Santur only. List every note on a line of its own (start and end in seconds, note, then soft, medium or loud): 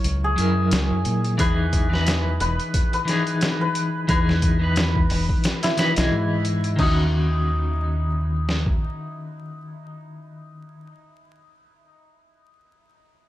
0.00 0.38 A#4 medium
0.00 1.26 C#5 loud
0.24 3.27 G#4 medium
1.40 2.40 B4 loud
2.41 2.93 B4 loud
2.94 3.61 B4 medium
3.61 4.09 B4 medium
4.09 6.82 B4 loud
5.63 6.85 E4 medium
6.79 10.95 D#4 medium